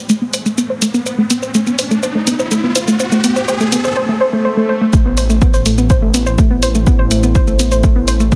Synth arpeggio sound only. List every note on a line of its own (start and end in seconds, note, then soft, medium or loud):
0.09 0.16 A3 medium
0.21 0.25 B3 medium
0.34 0.40 C5 medium
0.46 0.52 A3 medium
0.58 0.62 B3 medium
0.70 0.76 C5 medium
0.82 0.88 A3 medium
0.94 0.98 B3 medium
1.06 1.13 C5 medium
1.18 1.25 A3 medium
1.30 1.34 B3 medium
1.42 1.49 C5 medium
1.54 1.61 A3 medium
1.67 1.70 B3 medium
1.79 1.85 C5 medium
1.91 1.97 A3 medium
2.03 2.09 C5 medium
2.15 2.21 A3 medium
2.27 2.31 B3 medium
2.39 2.46 C5 medium
2.51 2.58 A3 medium
2.63 2.67 B3 medium
2.75 2.82 C5 medium
2.88 2.94 A3 medium
3.00 3.06 C5 medium
3.12 3.18 A3 medium
3.24 3.28 B3 medium
3.36 3.42 C5 medium
3.48 3.55 C5 medium
3.60 3.67 A3 medium
3.72 3.76 B3 medium
3.84 3.91 C5 medium
3.96 4.03 C5 medium
4.09 4.15 A3 medium
4.21 4.27 C5 medium
4.33 4.39 A3 medium
4.45 4.51 C5 medium
4.57 4.63 A3 medium
4.69 4.75 C5 medium
4.81 4.88 A3 medium
4.93 5.00 A3 medium
5.05 5.09 B3 medium
5.17 5.24 C5 medium
5.30 5.36 A3 medium
5.42 5.46 B3 medium
5.54 5.60 C5 medium
5.66 5.72 A3 medium
5.78 5.82 B3 medium
5.90 5.96 C5 medium
6.02 6.09 A3 medium
6.14 6.18 B3 medium
6.26 6.33 C5 medium
6.38 6.45 A3 medium
6.51 6.54 B3 medium
6.63 6.69 C5 medium
6.75 6.81 A3 medium
6.87 6.91 B3 medium
6.99 7.05 C5 medium
7.11 7.17 A3 medium
7.23 7.27 B3 medium
7.35 7.42 C5 medium
7.47 7.54 A3 medium
7.59 7.63 B3 medium
7.72 7.78 C5 medium
7.84 7.90 A3 medium
7.96 8.00 B3 medium
8.08 8.14 C5 medium
8.20 8.26 A3 medium
8.32 8.36 B3 medium